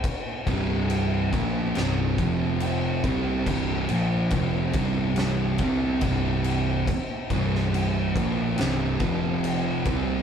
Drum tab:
CC |x-x-x-x-x-x-x-x-|x-x-x-x-x-x-x-x-|x-x-x-x-x-x-x-x-|
SD |--------o-------|--------o-------|---o----o-------|
BD |o-o---o---o---o-|o---o-o---o-o---|o-o---o---o---o-|